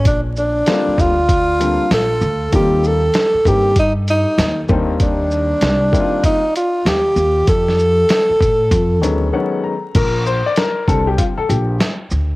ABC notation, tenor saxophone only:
X:1
M:4/4
L:1/8
Q:"Swing 16ths" 1/4=97
K:Bb
V:1 name="Tenor saxophone"
D D2 F3 A2 | G A2 G E E2 z | D4 E F G2 | A6 z2 |
z8 |]